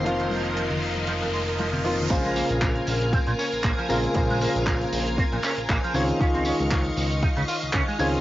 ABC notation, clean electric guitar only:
X:1
M:4/4
L:1/16
Q:"Swing 16ths" 1/4=117
K:Bbm
V:1 name="Clean electric guitar"
F, E, F, z F, z3 F, F,, A, z F, C, F z | B, A, B, z B, z3 C B,, D z B, F, B z | B, A, B, z B, z3 C B,, D z B, F, d z | D C D z D z3 E D, F z D A, d z |]